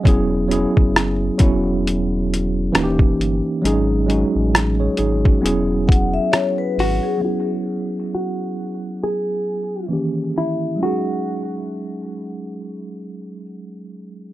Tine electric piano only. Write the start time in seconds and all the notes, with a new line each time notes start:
0.04 F#3 B3 C#4 E4
0.08 G#4
0.48 F#3 B3 C#4 E4
0.53 G#4
1.38 F#3 B3 C#4 E4
1.42 F#4
2.72 E3 A#3 C#4 D#4
2.77 F#4
2.84 G4
3.62 F#3 G#3 C#4 D#4
3.67 G#4
4.06 F#3 G#3 C#4 D#4
4.11 F#4
4.80 G#4 C#5
4.98 D#4 G#4
5.25 C#4 F#4
5.41 F#3 B3 C#4 E4
5.45 G#4
7.17 F#3 B3
7.22 C#4 E4
7.27 G#4
9.88 D#3 E3 A#3 C#4
9.93 G4
10.76 F#3 G#3
10.80 C#4 D#4
10.85 G#4